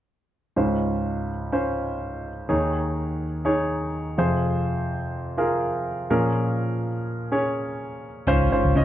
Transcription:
0.56 grand piano C#2 G#2 C#4 F4 C5
1.52 grand piano C#4 F4 C5
2.49 grand piano D#2 D#3 D#4 G#4 C#5
3.45 grand piano D#4 G#4 C#5
4.18 grand piano F2 C3 F4 G#4 C5
5.38 grand piano F4 G#4 A#4
6.10 grand piano A#2 F3 C#4 G#4 A#4
7.32 grand piano C#4 G#4 C#5
8.27 picked electric bass C#2, grand piano G#2 C#4 F4 C5, impact
8.52 grand piano C#4 F4 C5
8.65 picked electric bass C#2
8.75 picked electric bass C#2, grand piano C#4 F4 D#5

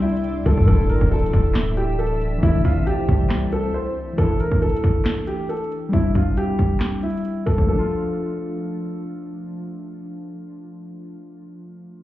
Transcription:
Already playing: 808-style bass C2, synth keys G3 C4 D4 E4, ambient pad D5 G5 C6 E6
0.02 grand piano E4, closed hi-hat
0.09 closed hi-hat
0.17 closed hi-hat
0.24 closed hi-hat
0.46 808-style bass C2, grand piano A4, kick, closed hi-hat
0.58 808-style bass G2, kick
0.62 synth keys E3 A3
0.67 808-style bass D1, synth keys D4, grand piano A4, ambient pad E5 A5, kick, closed hi-hat
0.72 synth keys E4
0.89 808-style bass A1, grand piano A#4, closed hi-hat
1.01 808-style bass D1, kick
1.12 grand piano A4, closed hi-hat
1.19 closed hi-hat
1.26 closed hi-hat
1.33 808-style bass D1, kick, closed hi-hat
1.54 snare, clap, closed hi-hat
1.77 grand piano G4, closed hi-hat
1.99 grand piano A4, closed hi-hat
2.07 closed hi-hat
2.14 closed hi-hat
2.21 closed hi-hat
2.38 synth keys E3 A3
2.43 808-style bass A1, synth keys C4, grand piano E4, ambient pad C5, kick, closed hi-hat
2.48 synth keys E4
2.65 808-style bass A1, grand piano F4, kick, open hi-hat
2.87 grand piano G4, closed hi-hat
3.09 808-style bass C2, kick, closed hi-hat
3.30 snare, clap, closed hi-hat
3.52 grand piano A4, closed hi-hat
3.74 grand piano C5
4.13 synth keys E3 A3
4.18 synth keys D4, grand piano A4, kick, closed hi-hat
4.23 synth keys E4
4.40 grand piano A#4, closed hi-hat
4.52 kick
4.62 grand piano A4, closed hi-hat
4.69 closed hi-hat
4.77 closed hi-hat
4.84 kick, closed hi-hat
5.05 snare, clap, closed hi-hat
5.27 grand piano G4, closed hi-hat
5.49 grand piano A4, closed hi-hat
5.57 closed hi-hat
5.64 closed hi-hat
5.72 closed hi-hat
5.89 synth keys G3 C4
5.93 synth keys D4, grand piano E4, kick, closed hi-hat
5.99 synth keys E4
6.15 grand piano F4, kick, closed hi-hat
6.37 grand piano G4, closed hi-hat
6.59 kick, closed hi-hat
6.80 snare, clap, closed hi-hat
7.03 grand piano E4, closed hi-hat
7.10 closed hi-hat
7.17 closed hi-hat
7.25 closed hi-hat
7.46 grand piano A4, kick, closed hi-hat
7.58 synth keys F3, kick
7.65 synth keys A3, grand piano A4
7.72 synth keys D4
7.78 synth keys F4

